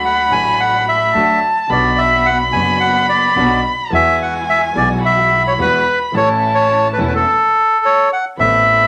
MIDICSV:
0, 0, Header, 1, 6, 480
1, 0, Start_track
1, 0, Key_signature, 3, "major"
1, 0, Tempo, 557103
1, 1469, Time_signature, 4, 2, 24, 8
1, 7644, End_track
2, 0, Start_track
2, 0, Title_t, "Violin"
2, 0, Program_c, 0, 40
2, 0, Note_on_c, 0, 83, 79
2, 982, Note_off_c, 0, 83, 0
2, 987, Note_on_c, 0, 81, 75
2, 1464, Note_on_c, 0, 83, 83
2, 1476, Note_off_c, 0, 81, 0
2, 3389, Note_on_c, 0, 80, 73
2, 3401, Note_off_c, 0, 83, 0
2, 4335, Note_off_c, 0, 80, 0
2, 4340, Note_on_c, 0, 83, 75
2, 5299, Note_on_c, 0, 81, 67
2, 5312, Note_off_c, 0, 83, 0
2, 6261, Note_off_c, 0, 81, 0
2, 7237, Note_on_c, 0, 83, 87
2, 7644, Note_off_c, 0, 83, 0
2, 7644, End_track
3, 0, Start_track
3, 0, Title_t, "Bandoneon"
3, 0, Program_c, 1, 23
3, 42, Note_on_c, 1, 78, 70
3, 278, Note_on_c, 1, 80, 77
3, 285, Note_off_c, 1, 78, 0
3, 518, Note_on_c, 1, 78, 76
3, 522, Note_off_c, 1, 80, 0
3, 737, Note_off_c, 1, 78, 0
3, 764, Note_on_c, 1, 76, 72
3, 1203, Note_off_c, 1, 76, 0
3, 1479, Note_on_c, 1, 74, 66
3, 1707, Note_on_c, 1, 76, 74
3, 1720, Note_off_c, 1, 74, 0
3, 1945, Note_on_c, 1, 78, 80
3, 1953, Note_off_c, 1, 76, 0
3, 2052, Note_off_c, 1, 78, 0
3, 2177, Note_on_c, 1, 80, 74
3, 2402, Note_off_c, 1, 80, 0
3, 2414, Note_on_c, 1, 78, 72
3, 2640, Note_off_c, 1, 78, 0
3, 2663, Note_on_c, 1, 74, 67
3, 3107, Note_off_c, 1, 74, 0
3, 3397, Note_on_c, 1, 76, 89
3, 3610, Note_off_c, 1, 76, 0
3, 3639, Note_on_c, 1, 78, 73
3, 3741, Note_off_c, 1, 78, 0
3, 3873, Note_on_c, 1, 76, 85
3, 3977, Note_off_c, 1, 76, 0
3, 4110, Note_on_c, 1, 74, 74
3, 4214, Note_off_c, 1, 74, 0
3, 4353, Note_on_c, 1, 76, 79
3, 4678, Note_off_c, 1, 76, 0
3, 4716, Note_on_c, 1, 73, 71
3, 4765, Note_off_c, 1, 73, 0
3, 4838, Note_on_c, 1, 71, 73
3, 5161, Note_off_c, 1, 71, 0
3, 5316, Note_on_c, 1, 73, 78
3, 5419, Note_off_c, 1, 73, 0
3, 5641, Note_on_c, 1, 73, 71
3, 5927, Note_off_c, 1, 73, 0
3, 5972, Note_on_c, 1, 71, 58
3, 6027, Note_off_c, 1, 71, 0
3, 6097, Note_on_c, 1, 71, 43
3, 6147, Note_off_c, 1, 71, 0
3, 6162, Note_on_c, 1, 69, 66
3, 6766, Note_on_c, 1, 73, 72
3, 6968, Note_off_c, 1, 69, 0
3, 6984, Note_off_c, 1, 73, 0
3, 7002, Note_on_c, 1, 78, 71
3, 7108, Note_off_c, 1, 78, 0
3, 7236, Note_on_c, 1, 76, 90
3, 7644, Note_off_c, 1, 76, 0
3, 7644, End_track
4, 0, Start_track
4, 0, Title_t, "String section"
4, 0, Program_c, 2, 48
4, 0, Note_on_c, 2, 57, 62
4, 0, Note_on_c, 2, 62, 56
4, 0, Note_on_c, 2, 66, 74
4, 234, Note_off_c, 2, 57, 0
4, 235, Note_off_c, 2, 62, 0
4, 235, Note_off_c, 2, 66, 0
4, 265, Note_on_c, 2, 57, 60
4, 267, Note_on_c, 2, 62, 58
4, 270, Note_on_c, 2, 66, 65
4, 951, Note_off_c, 2, 57, 0
4, 952, Note_off_c, 2, 62, 0
4, 953, Note_off_c, 2, 66, 0
4, 986, Note_on_c, 2, 57, 52
4, 989, Note_on_c, 2, 62, 54
4, 990, Note_on_c, 2, 66, 66
4, 1190, Note_off_c, 2, 57, 0
4, 1191, Note_off_c, 2, 62, 0
4, 1192, Note_off_c, 2, 66, 0
4, 1464, Note_on_c, 2, 59, 72
4, 1464, Note_on_c, 2, 62, 59
4, 1465, Note_on_c, 2, 66, 79
4, 2147, Note_off_c, 2, 59, 0
4, 2147, Note_off_c, 2, 62, 0
4, 2147, Note_off_c, 2, 66, 0
4, 2180, Note_on_c, 2, 59, 72
4, 2183, Note_on_c, 2, 62, 63
4, 2186, Note_on_c, 2, 66, 71
4, 2863, Note_off_c, 2, 59, 0
4, 2864, Note_off_c, 2, 62, 0
4, 2865, Note_off_c, 2, 66, 0
4, 2899, Note_on_c, 2, 59, 60
4, 2902, Note_on_c, 2, 62, 54
4, 2902, Note_on_c, 2, 66, 65
4, 3101, Note_off_c, 2, 59, 0
4, 3102, Note_off_c, 2, 62, 0
4, 3103, Note_off_c, 2, 66, 0
4, 3379, Note_on_c, 2, 56, 67
4, 3381, Note_on_c, 2, 64, 72
4, 3382, Note_on_c, 2, 66, 79
4, 4060, Note_off_c, 2, 56, 0
4, 4060, Note_off_c, 2, 64, 0
4, 4061, Note_off_c, 2, 66, 0
4, 4090, Note_on_c, 2, 56, 65
4, 4093, Note_on_c, 2, 64, 62
4, 4093, Note_on_c, 2, 66, 84
4, 4774, Note_off_c, 2, 56, 0
4, 4776, Note_off_c, 2, 64, 0
4, 4776, Note_off_c, 2, 66, 0
4, 4810, Note_on_c, 2, 56, 62
4, 4813, Note_on_c, 2, 64, 56
4, 4815, Note_on_c, 2, 66, 60
4, 5013, Note_off_c, 2, 56, 0
4, 5014, Note_off_c, 2, 64, 0
4, 5015, Note_off_c, 2, 66, 0
4, 5290, Note_on_c, 2, 57, 68
4, 5293, Note_on_c, 2, 61, 73
4, 5293, Note_on_c, 2, 64, 83
4, 5978, Note_off_c, 2, 57, 0
4, 5979, Note_off_c, 2, 61, 0
4, 5979, Note_off_c, 2, 64, 0
4, 6009, Note_on_c, 2, 57, 57
4, 6010, Note_on_c, 2, 61, 53
4, 6013, Note_on_c, 2, 64, 68
4, 6216, Note_off_c, 2, 57, 0
4, 6216, Note_off_c, 2, 61, 0
4, 6218, Note_off_c, 2, 64, 0
4, 7226, Note_on_c, 2, 60, 71
4, 7230, Note_on_c, 2, 69, 77
4, 7644, Note_off_c, 2, 60, 0
4, 7644, Note_off_c, 2, 69, 0
4, 7644, End_track
5, 0, Start_track
5, 0, Title_t, "Grand piano"
5, 0, Program_c, 3, 0
5, 0, Note_on_c, 3, 38, 67
5, 0, Note_on_c, 3, 50, 67
5, 0, Note_on_c, 3, 54, 50
5, 0, Note_on_c, 3, 57, 54
5, 0, Note_on_c, 3, 66, 61
5, 231, Note_off_c, 3, 54, 0
5, 235, Note_off_c, 3, 38, 0
5, 235, Note_off_c, 3, 50, 0
5, 238, Note_off_c, 3, 57, 0
5, 244, Note_off_c, 3, 66, 0
5, 251, Note_on_c, 3, 50, 53
5, 261, Note_on_c, 3, 54, 48
5, 267, Note_on_c, 3, 33, 66
5, 268, Note_on_c, 3, 45, 58
5, 272, Note_on_c, 3, 57, 54
5, 283, Note_on_c, 3, 66, 58
5, 944, Note_off_c, 3, 50, 0
5, 949, Note_off_c, 3, 54, 0
5, 952, Note_off_c, 3, 33, 0
5, 953, Note_off_c, 3, 45, 0
5, 955, Note_off_c, 3, 57, 0
5, 960, Note_off_c, 3, 66, 0
5, 988, Note_on_c, 3, 50, 62
5, 991, Note_on_c, 3, 54, 47
5, 992, Note_on_c, 3, 57, 54
5, 993, Note_on_c, 3, 38, 61
5, 993, Note_on_c, 3, 66, 61
5, 1192, Note_off_c, 3, 50, 0
5, 1192, Note_off_c, 3, 54, 0
5, 1193, Note_off_c, 3, 38, 0
5, 1193, Note_off_c, 3, 57, 0
5, 1193, Note_off_c, 3, 66, 0
5, 1444, Note_on_c, 3, 50, 65
5, 1454, Note_on_c, 3, 54, 52
5, 1461, Note_on_c, 3, 47, 73
5, 1462, Note_on_c, 3, 35, 72
5, 1465, Note_on_c, 3, 59, 56
5, 1479, Note_on_c, 3, 66, 66
5, 2137, Note_off_c, 3, 50, 0
5, 2142, Note_off_c, 3, 54, 0
5, 2145, Note_off_c, 3, 47, 0
5, 2146, Note_off_c, 3, 35, 0
5, 2147, Note_off_c, 3, 59, 0
5, 2154, Note_off_c, 3, 66, 0
5, 2165, Note_on_c, 3, 50, 55
5, 2178, Note_on_c, 3, 54, 49
5, 2181, Note_on_c, 3, 42, 61
5, 2182, Note_on_c, 3, 30, 65
5, 2188, Note_on_c, 3, 59, 48
5, 2199, Note_on_c, 3, 66, 64
5, 2855, Note_off_c, 3, 50, 0
5, 2861, Note_off_c, 3, 54, 0
5, 2863, Note_off_c, 3, 30, 0
5, 2863, Note_off_c, 3, 42, 0
5, 2866, Note_off_c, 3, 59, 0
5, 2872, Note_off_c, 3, 66, 0
5, 2898, Note_on_c, 3, 50, 54
5, 2898, Note_on_c, 3, 54, 54
5, 2900, Note_on_c, 3, 47, 66
5, 2901, Note_on_c, 3, 35, 69
5, 2902, Note_on_c, 3, 59, 54
5, 2902, Note_on_c, 3, 66, 68
5, 3100, Note_off_c, 3, 54, 0
5, 3101, Note_off_c, 3, 50, 0
5, 3102, Note_off_c, 3, 35, 0
5, 3102, Note_off_c, 3, 47, 0
5, 3103, Note_off_c, 3, 59, 0
5, 3103, Note_off_c, 3, 66, 0
5, 3364, Note_on_c, 3, 52, 73
5, 3375, Note_on_c, 3, 56, 58
5, 3380, Note_on_c, 3, 40, 72
5, 3385, Note_on_c, 3, 59, 55
5, 3398, Note_on_c, 3, 66, 70
5, 4057, Note_off_c, 3, 56, 0
5, 4060, Note_off_c, 3, 40, 0
5, 4060, Note_off_c, 3, 52, 0
5, 4062, Note_off_c, 3, 59, 0
5, 4069, Note_off_c, 3, 66, 0
5, 4076, Note_on_c, 3, 52, 58
5, 4089, Note_on_c, 3, 56, 51
5, 4095, Note_on_c, 3, 35, 73
5, 4095, Note_on_c, 3, 47, 67
5, 4100, Note_on_c, 3, 59, 50
5, 4113, Note_on_c, 3, 66, 67
5, 4768, Note_off_c, 3, 52, 0
5, 4774, Note_off_c, 3, 56, 0
5, 4777, Note_off_c, 3, 35, 0
5, 4777, Note_off_c, 3, 47, 0
5, 4780, Note_off_c, 3, 59, 0
5, 4786, Note_off_c, 3, 66, 0
5, 4816, Note_on_c, 3, 52, 73
5, 4817, Note_on_c, 3, 40, 68
5, 4817, Note_on_c, 3, 56, 58
5, 4818, Note_on_c, 3, 59, 51
5, 4819, Note_on_c, 3, 66, 67
5, 5016, Note_off_c, 3, 52, 0
5, 5016, Note_off_c, 3, 56, 0
5, 5017, Note_off_c, 3, 40, 0
5, 5017, Note_off_c, 3, 59, 0
5, 5017, Note_off_c, 3, 66, 0
5, 5274, Note_on_c, 3, 52, 67
5, 5286, Note_on_c, 3, 57, 60
5, 5293, Note_on_c, 3, 33, 71
5, 5293, Note_on_c, 3, 45, 78
5, 5300, Note_on_c, 3, 61, 57
5, 5308, Note_on_c, 3, 69, 68
5, 5970, Note_off_c, 3, 52, 0
5, 5976, Note_off_c, 3, 57, 0
5, 5979, Note_off_c, 3, 33, 0
5, 5979, Note_off_c, 3, 45, 0
5, 5983, Note_off_c, 3, 61, 0
5, 5987, Note_off_c, 3, 69, 0
5, 6013, Note_on_c, 3, 52, 57
5, 6015, Note_on_c, 3, 28, 63
5, 6016, Note_on_c, 3, 40, 66
5, 6016, Note_on_c, 3, 57, 51
5, 6018, Note_on_c, 3, 61, 50
5, 6021, Note_on_c, 3, 69, 60
5, 6218, Note_off_c, 3, 52, 0
5, 6219, Note_off_c, 3, 28, 0
5, 6219, Note_off_c, 3, 40, 0
5, 6219, Note_off_c, 3, 57, 0
5, 6220, Note_off_c, 3, 61, 0
5, 6222, Note_off_c, 3, 69, 0
5, 7215, Note_on_c, 3, 52, 60
5, 7227, Note_on_c, 3, 59, 60
5, 7233, Note_on_c, 3, 33, 77
5, 7234, Note_on_c, 3, 45, 76
5, 7241, Note_on_c, 3, 60, 64
5, 7250, Note_on_c, 3, 69, 67
5, 7644, Note_off_c, 3, 33, 0
5, 7644, Note_off_c, 3, 45, 0
5, 7644, Note_off_c, 3, 52, 0
5, 7644, Note_off_c, 3, 59, 0
5, 7644, Note_off_c, 3, 60, 0
5, 7644, Note_off_c, 3, 69, 0
5, 7644, End_track
6, 0, Start_track
6, 0, Title_t, "Upright bass"
6, 0, Program_c, 4, 32
6, 0, Note_on_c, 4, 38, 72
6, 236, Note_off_c, 4, 38, 0
6, 268, Note_on_c, 4, 33, 67
6, 952, Note_off_c, 4, 33, 0
6, 985, Note_on_c, 4, 38, 73
6, 1189, Note_off_c, 4, 38, 0
6, 1462, Note_on_c, 4, 35, 73
6, 2145, Note_off_c, 4, 35, 0
6, 2181, Note_on_c, 4, 30, 71
6, 2863, Note_off_c, 4, 30, 0
6, 2895, Note_on_c, 4, 35, 80
6, 3099, Note_off_c, 4, 35, 0
6, 3375, Note_on_c, 4, 40, 80
6, 4057, Note_off_c, 4, 40, 0
6, 4095, Note_on_c, 4, 35, 78
6, 4777, Note_off_c, 4, 35, 0
6, 4809, Note_on_c, 4, 40, 77
6, 5013, Note_off_c, 4, 40, 0
6, 5285, Note_on_c, 4, 33, 76
6, 5975, Note_off_c, 4, 33, 0
6, 6010, Note_on_c, 4, 28, 68
6, 6216, Note_off_c, 4, 28, 0
6, 7232, Note_on_c, 4, 33, 75
6, 7644, Note_off_c, 4, 33, 0
6, 7644, End_track
0, 0, End_of_file